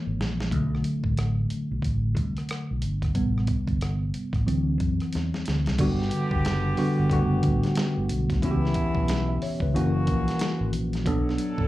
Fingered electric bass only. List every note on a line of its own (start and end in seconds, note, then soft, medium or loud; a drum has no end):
0.07 0.18 G#1 medium
0.20 0.52 A#1 medium
0.52 0.82 B1 medium
1.04 1.46 A1 medium
1.52 muted fingered electric bass stroke soft
1.71 1.83 B1 medium
1.83 2.13 A1 medium
2.18 2.35 C2 medium
2.71 2.82 B1 medium
2.84 3.13 G1 medium
3.16 3.46 A1 medium
3.69 4.10 G1 medium
4.15 muted fingered electric bass stroke soft
4.34 4.46 A1 medium
4.49 4.78 D2 medium
4.81 4.98 F#2 medium
5.15 5.32 E2 medium
5.48 5.65 D2 medium
5.68 5.79 C2 medium
5.80 6.09 G1 medium
6.32 6.74 F#1 medium
6.80 muted fingered electric bass stroke soft
6.99 7.10 G1 medium
7.11 7.41 F#1 medium
7.45 7.62 A1 medium
7.98 8.09 G1 medium
8.11 8.40 B1 medium
8.43 8.73 C#2 loud
8.96 9.38 B1 medium
9.43 muted fingered electric bass stroke soft
9.61 9.73 C#2 medium
9.75 10.05 F#1 loud
10.09 10.26 A#1 medium
10.61 10.72 G#1 medium
10.74 11.07 A#1 medium
11.07 11.36 B1 loud
11.59 11.68 A1 medium